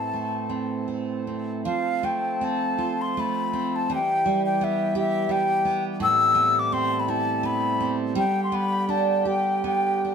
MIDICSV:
0, 0, Header, 1, 4, 480
1, 0, Start_track
1, 0, Key_signature, 0, "minor"
1, 0, Tempo, 755668
1, 1056, Time_signature, 3, 2, 24, 8
1, 2021, Tempo, 713436
1, 5861, Tempo, 773196
1, 6642, End_track
2, 0, Start_track
2, 0, Title_t, "Flute"
2, 0, Program_c, 0, 73
2, 0, Note_on_c, 0, 81, 69
2, 548, Note_off_c, 0, 81, 0
2, 1049, Note_on_c, 0, 77, 74
2, 1299, Note_on_c, 0, 79, 70
2, 1309, Note_off_c, 0, 77, 0
2, 1552, Note_on_c, 0, 81, 76
2, 1561, Note_off_c, 0, 79, 0
2, 1915, Note_on_c, 0, 84, 77
2, 1925, Note_off_c, 0, 81, 0
2, 2032, Note_on_c, 0, 83, 79
2, 2042, Note_off_c, 0, 84, 0
2, 2409, Note_on_c, 0, 81, 77
2, 2419, Note_off_c, 0, 83, 0
2, 2520, Note_off_c, 0, 81, 0
2, 2535, Note_on_c, 0, 79, 88
2, 2856, Note_off_c, 0, 79, 0
2, 2878, Note_on_c, 0, 79, 75
2, 3002, Note_on_c, 0, 76, 78
2, 3013, Note_off_c, 0, 79, 0
2, 3230, Note_off_c, 0, 76, 0
2, 3237, Note_on_c, 0, 76, 76
2, 3457, Note_on_c, 0, 79, 89
2, 3467, Note_off_c, 0, 76, 0
2, 3807, Note_off_c, 0, 79, 0
2, 3937, Note_on_c, 0, 88, 106
2, 4315, Note_on_c, 0, 86, 88
2, 4326, Note_off_c, 0, 88, 0
2, 4409, Note_on_c, 0, 84, 95
2, 4419, Note_off_c, 0, 86, 0
2, 4587, Note_on_c, 0, 83, 63
2, 4597, Note_off_c, 0, 84, 0
2, 4655, Note_on_c, 0, 81, 83
2, 4666, Note_off_c, 0, 83, 0
2, 4899, Note_on_c, 0, 83, 90
2, 4909, Note_off_c, 0, 81, 0
2, 5236, Note_off_c, 0, 83, 0
2, 5386, Note_on_c, 0, 79, 81
2, 5553, Note_off_c, 0, 79, 0
2, 5557, Note_on_c, 0, 84, 64
2, 5630, Note_on_c, 0, 83, 82
2, 5640, Note_off_c, 0, 84, 0
2, 5868, Note_on_c, 0, 81, 79
2, 5877, Note_off_c, 0, 83, 0
2, 6099, Note_on_c, 0, 79, 75
2, 6108, Note_off_c, 0, 81, 0
2, 6339, Note_off_c, 0, 79, 0
2, 6345, Note_on_c, 0, 79, 77
2, 6642, Note_off_c, 0, 79, 0
2, 6642, End_track
3, 0, Start_track
3, 0, Title_t, "Harmonium"
3, 0, Program_c, 1, 20
3, 0, Note_on_c, 1, 52, 49
3, 0, Note_on_c, 1, 60, 44
3, 0, Note_on_c, 1, 69, 54
3, 1025, Note_off_c, 1, 69, 0
3, 1041, Note_off_c, 1, 60, 0
3, 1043, Note_off_c, 1, 52, 0
3, 1048, Note_on_c, 1, 53, 53
3, 1050, Note_on_c, 1, 69, 61
3, 1051, Note_on_c, 1, 60, 52
3, 2492, Note_off_c, 1, 53, 0
3, 2493, Note_off_c, 1, 60, 0
3, 2493, Note_off_c, 1, 69, 0
3, 2497, Note_on_c, 1, 67, 66
3, 2498, Note_on_c, 1, 55, 54
3, 2503, Note_on_c, 1, 52, 60
3, 3903, Note_off_c, 1, 67, 0
3, 3906, Note_off_c, 1, 52, 0
3, 3916, Note_on_c, 1, 69, 75
3, 3917, Note_on_c, 1, 48, 68
3, 5356, Note_off_c, 1, 48, 0
3, 5356, Note_off_c, 1, 69, 0
3, 5369, Note_on_c, 1, 50, 65
3, 5372, Note_on_c, 1, 67, 71
3, 6642, Note_off_c, 1, 50, 0
3, 6642, Note_off_c, 1, 55, 0
3, 6642, Note_off_c, 1, 67, 0
3, 6642, End_track
4, 0, Start_track
4, 0, Title_t, "Steel-string acoustic guitar"
4, 0, Program_c, 2, 25
4, 0, Note_on_c, 2, 45, 54
4, 0, Note_on_c, 2, 60, 38
4, 85, Note_on_c, 2, 57, 39
4, 312, Note_off_c, 2, 60, 0
4, 314, Note_on_c, 2, 60, 38
4, 554, Note_off_c, 2, 57, 0
4, 557, Note_on_c, 2, 57, 34
4, 806, Note_off_c, 2, 60, 0
4, 808, Note_on_c, 2, 60, 31
4, 1050, Note_on_c, 2, 53, 64
4, 1057, Note_off_c, 2, 45, 0
4, 1288, Note_off_c, 2, 60, 0
4, 1290, Note_off_c, 2, 57, 0
4, 1290, Note_on_c, 2, 57, 48
4, 1532, Note_on_c, 2, 60, 53
4, 1768, Note_on_c, 2, 65, 53
4, 2007, Note_off_c, 2, 57, 0
4, 2015, Note_on_c, 2, 57, 53
4, 2250, Note_off_c, 2, 60, 0
4, 2258, Note_on_c, 2, 60, 50
4, 2499, Note_off_c, 2, 53, 0
4, 2502, Note_on_c, 2, 52, 65
4, 2551, Note_off_c, 2, 65, 0
4, 2553, Note_off_c, 2, 60, 0
4, 2556, Note_off_c, 2, 57, 0
4, 2744, Note_on_c, 2, 55, 51
4, 2983, Note_on_c, 2, 59, 58
4, 3211, Note_on_c, 2, 67, 62
4, 3432, Note_off_c, 2, 55, 0
4, 3440, Note_on_c, 2, 55, 55
4, 3679, Note_off_c, 2, 59, 0
4, 3682, Note_on_c, 2, 59, 53
4, 3917, Note_on_c, 2, 45, 71
4, 3965, Note_off_c, 2, 55, 0
4, 3967, Note_off_c, 2, 67, 0
4, 4151, Note_off_c, 2, 59, 0
4, 4151, Note_on_c, 2, 59, 58
4, 4403, Note_on_c, 2, 60, 60
4, 4646, Note_on_c, 2, 64, 60
4, 4857, Note_off_c, 2, 52, 0
4, 4878, Note_off_c, 2, 59, 0
4, 4880, Note_on_c, 2, 59, 56
4, 5123, Note_off_c, 2, 60, 0
4, 5131, Note_on_c, 2, 60, 50
4, 5366, Note_on_c, 2, 55, 72
4, 5371, Note_off_c, 2, 45, 0
4, 5420, Note_off_c, 2, 60, 0
4, 5421, Note_off_c, 2, 64, 0
4, 5610, Note_off_c, 2, 59, 0
4, 5613, Note_on_c, 2, 59, 52
4, 5859, Note_on_c, 2, 62, 54
4, 6087, Note_on_c, 2, 67, 54
4, 6319, Note_off_c, 2, 59, 0
4, 6327, Note_on_c, 2, 59, 50
4, 6572, Note_off_c, 2, 62, 0
4, 6579, Note_on_c, 2, 62, 42
4, 6642, Note_off_c, 2, 55, 0
4, 6642, Note_off_c, 2, 59, 0
4, 6642, Note_off_c, 2, 62, 0
4, 6642, Note_off_c, 2, 67, 0
4, 6642, End_track
0, 0, End_of_file